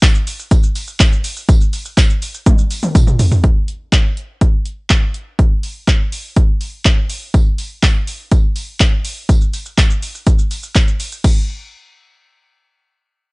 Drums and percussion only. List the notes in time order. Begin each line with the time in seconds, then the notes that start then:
0.02 kick, clap, closed hi-hat, tambourine, shaker
0.15 shaker
0.27 open hi-hat, shaker
0.39 shaker
0.51 kick, closed hi-hat, tambourine, shaker
0.63 shaker
0.75 open hi-hat, tambourine, shaker
0.87 shaker
1.00 kick, clap, closed hi-hat, tambourine, shaker
1.12 shaker
1.24 open hi-hat, tambourine, shaker
1.36 shaker
1.49 kick, closed hi-hat, tambourine, shaker
1.61 shaker
1.73 open hi-hat, tambourine, shaker
1.85 shaker
1.97 kick, clap, closed hi-hat, tambourine, shaker
2.10 shaker
2.22 open hi-hat, tambourine, shaker
2.34 shaker
2.46 kick, closed hi-hat, high tom, shaker
2.58 shaker
2.71 open hi-hat, tambourine, shaker
2.83 mid tom, shaker
2.95 kick, closed hi-hat, mid tom, tambourine, shaker
3.07 mid tom, shaker
3.19 floor tom, open hi-hat, tambourine, shaker
3.32 floor tom, shaker
3.44 kick, closed hi-hat
3.68 closed hi-hat
3.92 kick, clap, closed hi-hat
4.17 closed hi-hat
4.41 kick, closed hi-hat
4.66 closed hi-hat
4.90 kick, clap, closed hi-hat
5.14 closed hi-hat
5.39 kick, closed hi-hat
5.63 open hi-hat
5.88 kick, clap, closed hi-hat
6.12 open hi-hat
6.36 kick, closed hi-hat
6.61 open hi-hat
6.85 kick, clap, closed hi-hat
7.09 open hi-hat
7.34 kick, closed hi-hat, tambourine
7.58 open hi-hat, tambourine
7.83 kick, clap, closed hi-hat, tambourine
8.07 open hi-hat
8.31 kick, closed hi-hat, tambourine
8.56 open hi-hat, tambourine
8.80 kick, clap, closed hi-hat, tambourine
9.05 open hi-hat, tambourine
9.29 kick, closed hi-hat, tambourine, shaker
9.42 shaker
9.53 open hi-hat, tambourine, shaker
9.66 shaker
9.78 kick, clap, closed hi-hat, tambourine, shaker
9.90 shaker
10.03 open hi-hat, shaker
10.15 shaker
10.27 kick, closed hi-hat, tambourine, shaker
10.39 shaker
10.51 open hi-hat, tambourine, shaker
10.63 shaker
10.75 kick, clap, closed hi-hat, tambourine, shaker
10.88 shaker
11.00 open hi-hat, tambourine, shaker
11.12 shaker
11.24 kick, crash, tambourine